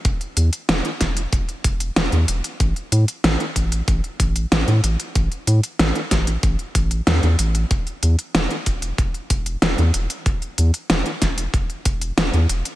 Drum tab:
HH |xxxxxxxxxxxxxxxx|xxxxxxxxxxxxxxxx|xxxxxxxxxxxxxxxx|xxxxxxxxxxxxxxxx|
SD |----o-o-----o---|----o-------o---|----o-o-----o---|----o-------o---|
BD |o-----o-o-o-----|o-----o-o-o-----|o-----o-o-o-----|o-----o-o-o-----|

HH |xxxxxxxxxxxxxxxx|
SD |----o-o-----o---|
BD |o-----o-o-o-----|